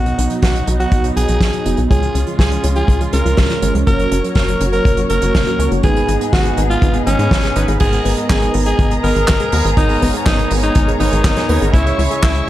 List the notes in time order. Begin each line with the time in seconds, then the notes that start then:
Already playing: B1 B2 F#3 B3 D#4 F#4 D#5
0.06 F#3, closed hi-hat
0.18 B1 D#4, closed hi-hat
0.30 F#3, closed hi-hat
0.42 B1 F#4, kick, snare, closed hi-hat
0.55 F#3, closed hi-hat
0.67 B1 D#4, closed hi-hat
0.80 F#3 F#4, closed hi-hat
0.92 B1, kick, closed hi-hat
1.04 F#3, closed hi-hat
1.16 B1 D#4 G#4, closed hi-hat
1.28 B1 F#3, closed hi-hat
1.41 B1, kick, snare, closed hi-hat
1.53 F#3, closed hi-hat
1.66 F#1 B3 D#4 F#4 D#5, closed hi-hat
1.77 B1 F#3, closed hi-hat
1.90 C#2 C#3 G#3 C#4 F4 G#4 C#5, kick, closed hi-hat
2.02 F3, closed hi-hat
2.15 C#2 C#4, closed hi-hat
2.27 F3, closed hi-hat
2.39 C#2 G#4, kick, snare, closed hi-hat
2.52 F3, closed hi-hat
2.64 C#2 C#4, closed hi-hat
2.76 F3 G#4, closed hi-hat
2.88 C#2, kick, closed hi-hat
3.01 F3, closed hi-hat
3.13 C#2 C#4 A#4, closed hi-hat
3.25 C#2 F3, closed hi-hat
3.37 C#2, kick, snare, closed hi-hat
3.49 F3, snare, closed hi-hat
3.62 G#1 G#3 C#4 F4 C#5, closed hi-hat
3.75 C#2 F3, closed hi-hat
3.87 F#1 F#3 A#3 C#4 F#4 A#4 C#5, kick, closed hi-hat
3.99 F#3, closed hi-hat
4.11 F#1 C#4, closed hi-hat
4.24 F#3, closed hi-hat
4.35 F#1 A#4, kick, snare, closed hi-hat
4.48 F#3, closed hi-hat
4.61 F#1 C#4, closed hi-hat
4.73 F#3 A#4, closed hi-hat
4.85 F#1, kick, closed hi-hat
4.97 F#3, closed hi-hat
5.10 F#1 C#4 A#4, closed hi-hat
5.22 F#1 F#3, closed hi-hat
5.35 F#1, kick, snare, closed hi-hat
5.47 F#3, closed hi-hat
5.59 C#2 A#3 C#4 F#4 C#5, closed hi-hat
5.71 F#1 F#3, closed hi-hat
5.83 G#1 G#2 G#3 B3 D#4 G#4 B4, kick, closed hi-hat
5.96 G#3, closed hi-hat
6.08 G#1 D#4, closed hi-hat
6.21 G#3, closed hi-hat
6.33 G#1 F#4, kick, snare, closed hi-hat
6.45 G#3, closed hi-hat
6.57 G#1 D#4, closed hi-hat
6.70 G#3 F4, closed hi-hat
6.82 G#1, kick, closed hi-hat
6.94 G#3, closed hi-hat
7.06 G#1 C#4 D#4, closed hi-hat
7.19 G#2 G#3, closed hi-hat
7.31 G#1, kick, snare, closed hi-hat
7.43 G#3, snare, closed hi-hat
7.56 G#1 G#2 G#3 B3 D#4 B4, closed hi-hat
7.68 G#1 G#3, closed hi-hat
7.80 G#1 G#2 G#3 B3 D#4 G#4 A#4 D#5 A#5, kick, closed hi-hat, crash
7.93 G#3, closed hi-hat
8.05 G#1 B3, open hi-hat
8.17 G#3, closed hi-hat
8.30 G#1 G#4, kick, snare, clap, closed hi-hat
8.42 G#3, closed hi-hat
8.54 G#1 B3, open hi-hat
8.66 G#3 G#4, closed hi-hat
8.79 G#1, kick, closed hi-hat
8.91 G#3, closed hi-hat
9.03 G#1 B3 A#4, open hi-hat
9.16 G#1 G#3, closed hi-hat
9.28 G#1, kick, snare, clap, closed hi-hat
9.40 G#3, closed hi-hat
9.52 D#2 G#2 G#3 B3 D#4 A#4, open hi-hat
9.65 G#1 G#3, closed hi-hat
9.77 G#1 G#2 G#3 B3 D#4 A#4 C#5, kick, closed hi-hat
9.89 G#3, open hi-hat
10.02 G#1 B3, kick, open hi-hat
10.14 G#3, closed hi-hat
10.26 G#1 D#4, kick, snare, clap, closed hi-hat
10.39 G#3, closed hi-hat
10.51 G#1 B3, open hi-hat
10.63 G#3 D#4, closed hi-hat
10.75 G#1, kick, closed hi-hat
10.88 G#3, closed hi-hat
11.00 G#1 B3 D#4, open hi-hat
11.12 G#1 G#3, closed hi-hat
11.24 G#1, kick, snare, clap, closed hi-hat
11.37 G#3, snare, closed hi-hat
11.49 D#2 C#3 G#3 B3 D#4 A#4, open hi-hat
11.61 G#1 G#3, closed hi-hat
11.74 C#2 C#3 G#3 C#4 E4 G#4 C#5 E5 C#6, kick, closed hi-hat
11.86 G#3, closed hi-hat
11.98 C#2 E4, open hi-hat
12.11 G#3, closed hi-hat
12.23 C#2 E4, kick, snare, clap, closed hi-hat
12.35 G#3, closed hi-hat